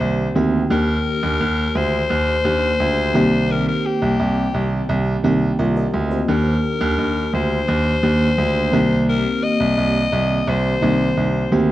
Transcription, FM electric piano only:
0.00 0.14 D#3 medium
0.00 0.14 A#3 medium
0.00 0.14 C4 medium
0.00 0.14 G4 medium
0.35 0.59 D#3 medium
0.35 0.60 A#3 medium
0.35 0.60 C4 medium
0.35 0.60 G4 medium
0.70 1.67 D#3 medium
0.70 1.67 A#3 medium
0.70 1.67 D4 medium
0.70 1.67 G4 medium
2.44 2.93 D#3 medium
2.44 2.93 A#3 medium
2.44 2.93 D4 medium
2.44 2.94 G4 medium
3.14 4.26 D#3 loud
3.14 4.26 A#3 medium
3.14 4.26 C4 medium
3.14 4.27 G4 loud
5.23 5.72 D#3 medium
5.23 5.72 A#3 medium
5.23 5.72 C4 medium
5.23 5.59 G4 medium
5.59 5.76 F4 medium
5.59 5.75 A#4 medium
5.76 6.10 A#4 medium
5.76 6.09 D#5 medium
6.11 6.28 G4 medium
6.11 6.44 C5 medium
6.28 7.25 D#3 medium
6.28 7.25 A#3 medium
6.28 7.25 D4 medium
6.28 7.26 G4 medium
8.02 8.51 D#3 medium
8.02 8.51 A#3 medium
8.02 8.51 D4 medium
8.02 8.52 G4 medium
8.72 9.84 D#3 medium
8.72 9.84 A#3 medium
8.72 9.85 C4 medium
8.72 9.85 G4 loud
10.81 11.30 D#3 medium
10.81 11.30 A#3 medium
10.81 11.30 C4 medium
10.81 11.31 D#4 medium
11.51 11.72 D#3 medium
11.51 11.72 A#3 medium
11.51 11.72 C4 medium
11.51 11.72 G4 loud

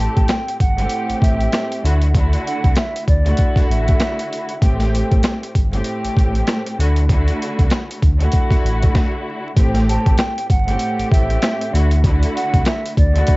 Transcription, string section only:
0.00 0.53 A2 loud
0.00 0.53 A3 medium
0.00 0.54 C4 medium
0.00 0.54 G4 loud
0.77 1.83 A2 loud
0.77 1.82 A3 loud
0.77 1.84 C4 medium
0.77 1.84 G4 loud
1.83 2.05 D3 medium
1.83 2.05 A3 medium
1.83 2.05 E4 medium
1.83 2.06 F#4 loud
2.15 3.01 D3 loud
2.15 3.01 A3 medium
2.15 3.02 E4 medium
2.15 3.02 F#4 loud
3.25 4.53 D3 medium
3.25 4.53 A3 medium
3.25 4.53 E4 medium
3.25 4.53 F#4 loud
4.61 5.48 A2 loud
4.61 5.48 A3 medium
4.61 5.48 C4 medium
4.61 5.49 G4 loud
5.72 6.78 A2 loud
5.72 6.77 A3 medium
5.72 6.79 C4 medium
5.72 6.79 G4 loud
6.78 7.00 D3 loud
6.78 7.00 A3 medium
6.78 7.00 E4 medium
6.78 7.01 F#4 loud
7.09 7.96 D3 loud
7.09 7.96 A3 medium
7.09 7.96 E4 medium
7.09 7.97 F#4 loud
8.20 9.47 D3 medium
8.20 9.48 A3 medium
8.20 9.48 E4 medium
8.20 9.48 F#4 loud
9.56 10.43 A2 loud
9.56 10.43 A3 medium
9.56 10.43 C4 medium
9.56 10.43 G4 loud
10.67 11.73 A2 loud
10.67 11.72 A3 loud
10.67 11.74 C4 medium
10.67 11.74 G4 loud
11.72 11.94 D3 loud
11.72 11.95 A3 medium
11.72 11.95 E4 medium
11.72 11.95 F#4 loud
12.04 12.91 D3 loud
12.04 12.91 A3 medium
12.04 12.91 E4 medium
12.04 12.91 F#4 loud
13.14 13.37 D3 loud
13.14 13.37 A3 medium
13.14 13.37 E4 loud
13.14 13.37 F#4 loud

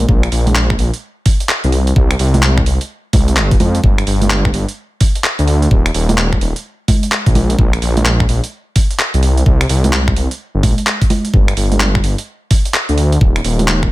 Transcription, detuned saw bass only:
0.09 0.28 A#1 medium
0.32 0.76 A#1 loud
0.79 0.90 A#1 loud
1.64 1.93 C2 medium
1.96 2.16 C2 medium
2.20 2.63 C2 loud
2.66 2.78 C2 loud
3.13 3.38 C2 medium
3.37 3.56 G1 medium
3.60 3.80 F2 medium
3.84 4.03 G1 loud
4.07 4.51 G1 loud
4.54 4.65 G1 loud
5.39 5.68 D2 medium
5.71 5.91 D#1 loud
5.94 6.38 D#1 loud
6.41 6.53 D#1 loud
7.26 7.56 A#1 medium
7.58 7.78 A#1 loud
7.82 8.26 A#1 loud
8.29 8.40 A#1 loud
9.14 9.43 C2 medium
9.46 9.66 C2 loud
9.69 10.13 C2 loud
10.16 10.28 C2 loud
10.55 10.65 G1 medium
10.63 10.75 A#1 medium
11.34 11.53 G1 loud
11.57 12.01 G1 loud
12.04 12.15 G1 loud
12.89 13.18 D2 medium
13.21 13.41 D#1 loud
13.44 13.88 D#1 loud

